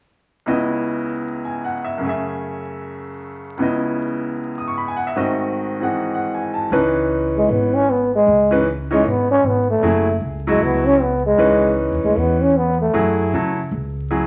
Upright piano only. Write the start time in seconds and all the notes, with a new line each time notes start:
0.46 C#2 C#3 B3 E4 D#5
1.45 G#5
1.64 F#5
1.84 E5
1.98 F#2 C#3
2.04 A3 G#4
2.09 E5
3.57 C#2 C#3 B3
3.61 E4 D#5
4.58 D#6
4.68 C#6
4.78 B5
4.88 G#5
4.96 F#5
5.07 E5
5.16 G#2 D#3 A3 C4 F#4 D#5
5.80 E3 C4 D#4 G#4 F#5
6.14 F#5
6.34 G#5
6.54 A5
6.72 E3 C#4 D#4 B4
8.51 E3 C#4 D#4 B4
8.91 E3 C#4 D#4 C#5
9.83 F#3 A3 E4 G#4
10.47 F#3 A3 E4 F#4
11.38 E3 C#4 D#4 B4
12.93 F#3 A3 E4 G#4
13.34 F#3 A3 E4 A4
14.10 F#3 A3 E4 G#4